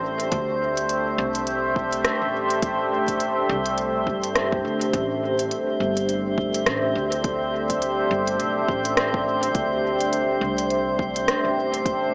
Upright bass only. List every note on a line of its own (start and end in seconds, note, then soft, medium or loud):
0.00 0.30 A1 loud
0.32 1.16 D2 loud
1.18 2.03 C2 loud
2.22 3.47 A1 medium
3.49 4.06 C2 loud
4.07 4.62 G2 medium
4.65 4.91 D2 medium
4.93 5.49 A1 medium
5.80 6.64 G1 loud
6.67 6.92 A1 loud
6.95 8.08 D2 loud
8.11 8.37 G1 loud
8.40 8.65 B1 medium
8.68 9.55 A1 medium
9.55 10.39 D2 loud
10.41 11.26 C2 loud
11.45 12.14 A1 medium